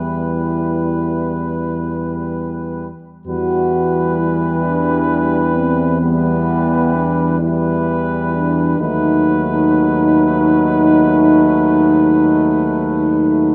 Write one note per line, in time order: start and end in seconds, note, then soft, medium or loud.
0.00 2.92 E2 soft
0.00 2.88 E3 soft
0.00 2.88 G3 soft
0.00 1.77 E4 soft
0.00 2.88 B4 soft
3.26 8.75 E2 soft
3.26 5.97 E3 medium
3.26 5.97 G3 soft
3.26 4.14 F#4 medium
3.26 5.98 B4 medium
4.18 4.64 E4 medium
4.64 5.55 D4 medium
5.55 6.00 C4 medium
6.01 7.38 E3 soft
6.01 7.38 G3 soft
6.01 6.93 B3 medium
6.01 7.38 B4 medium
6.94 7.41 D4 medium
7.40 8.76 E3 soft
7.40 8.76 G3 soft
7.40 8.34 E4 medium
7.40 8.78 B4 soft
8.36 8.79 D4 medium
8.79 13.55 D#2 medium
8.79 13.55 F#3 medium
8.79 13.55 A3 soft
8.79 13.55 D#4 medium
8.79 13.55 B4 medium